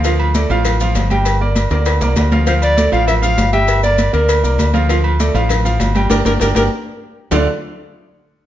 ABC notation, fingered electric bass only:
X:1
M:4/4
L:1/8
Q:1/4=198
K:Dm
V:1 name="Fingered electric bass" clef=bass
D,,3 A,,,3 G,,,2- | G,,,3 D,,2 C,, D,,2- | D,,3 A,,,3 G,,,2- | G,,,3 D,,2 C,, D,,2- |
D,,3 A,,,3 G,,,2 | G,,, G,,, G,,, G,,, z4 | D,, z6 z |]